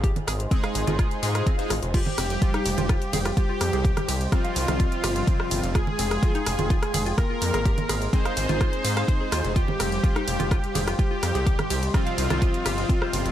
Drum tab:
CC |----------------|x---------------|----------------|----------------|
RD |----------------|--x---x---x---x-|--x---x---x---x-|--x---x---x---x-|
HH |xxoxxxoxxxoxxxox|x-oxxxoxxxoxx-ox|xxoxxxoxxxoxx-ox|x-oxxxoxxxoxx-ox|
SD |--r--r--r--r--r-|--r--r--r--r--r-|-r--r--r--r--r--|r--r--r--r--r--r|
CG |-O-----O--------|-O-----O--O-----|-O-----O--------|-O-----O--O-----|
BD |o---o---o---o---|o---o---o---o---|o---o---o---o---|o---o---o---o---|

CC |----------------|----------------|----------------|
RD |--x---x---x---x-|--x---x---x---x-|--x---x---x---x-|
HH |xxoxxxoxxxoxx-ox|x-oxxxoxxxoxx-ox|xxoxxxoxxxoxx-ox|
SD |--r--r--r--r--r-|--r--r--r--r--r-|-r--r--r--r--r--|
CG |-O-----O--------|-O-----O--O-----|-O-----O--------|
BD |o---o---o---o---|o---o---o---o---|o---o---o---o---|